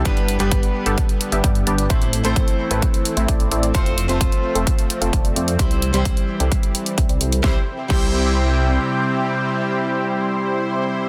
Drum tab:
CC |----------------|----------------|----------------|----------------|
HH |xxxxxx-xxxxxxxxx|xxxxxx-xxxxxxxxx|xxxxxx-xxxxxxxxx|xxxxxx-xxxxxxxxx|
SD |----------------|----------------|----------------|----------------|
BD |o---o---o---o---|o---o---o---o---|o---o---o---o---|o---o---o---o---|

CC |----x-----------|----------------|
HH |----------------|----------------|
SD |o---------------|----------------|
BD |o---o-----------|----------------|